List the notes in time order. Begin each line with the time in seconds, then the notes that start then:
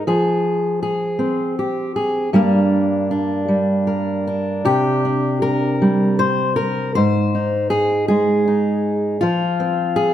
0.07 F3 G#4
0.83 G#4
1.19 C4
1.59 G4
1.96 G#4
2.33 G2 G3 A#3 D4 A#4
3.11 D4
3.48 G3
3.87 A#4
4.27 D4
4.65 C3 G4
5.05 D4
5.42 A#4
5.82 G3
6.19 C5
6.56 A#4
6.95 G#2 C5
7.35 D#4
7.70 G#4
8.08 G#3 G#4
8.48 D#4
9.21 F3 F4
9.60 C4
9.96 G#4